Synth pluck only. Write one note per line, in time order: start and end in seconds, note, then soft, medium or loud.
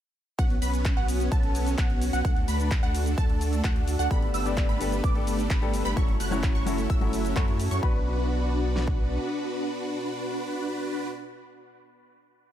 0.39 0.55 F#5 loud
0.62 0.94 B5 medium
0.97 1.29 F#5 medium
1.32 1.75 A5 medium
1.78 2.10 F#5 medium
2.13 2.22 F#5 medium
2.25 2.41 F#5 loud
2.48 2.80 B5 medium
2.83 3.15 F#5 medium
3.18 3.61 A5 loud
3.64 3.96 F#5 medium
3.99 4.08 F#5 loud
4.11 4.27 B5 loud
4.34 4.66 E6 medium
4.69 5.01 B5 medium
5.04 5.48 D6 loud
5.50 5.82 B5 medium
5.85 5.94 B5 loud
5.97 6.13 C#6 loud
6.20 6.52 F#6 medium
6.55 6.87 C#6 medium
6.90 7.34 E6 loud
7.36 7.68 C#6 medium
7.71 7.80 C#6 loud
7.83 11.07 B5 loud